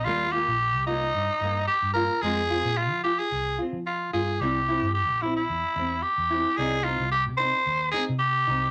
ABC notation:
X:1
M:4/4
L:1/16
Q:"Swing 16ths" 1/4=110
K:Cphr
V:1 name="Tenor saxophone"
F2 G4 E6 G2 B2 | A4 F2 G A3 z2 F2 A2 | G4 G2 =E E4- E G4 | A2 F2 G2 c4 A2 G4 |]
V:2 name="Nylon-string guitar"
[G,B,F]2 [B,F]2 z2 [B,F]2 z2 B,2 z2 [B,F]2 | [A,CF]2 [CF]2 z2 F2 z2 [CF]2 z2 F2 | [G,C=E]2 [CE]2 z2 [CE]2 z2 C2 z2 [CE]2 | [G,CE]2 [CE]2 z2 [CE]2 z2 [CE]2 z2 [CE]2 |]
V:3 name="Fingered electric bass" clef=bass
E,,3 B,,,2 C,,3 G,, z G,,2 z G,,2 z | F,,3 B,,2 F,2 z C,,2 z F,3 G,,2 | C,,3 G,,2 B,,,3 =E,, z E,,2 z E,,2 z | C,,3 C,,2 C,2 z E,,2 z C,3 C,,2 |]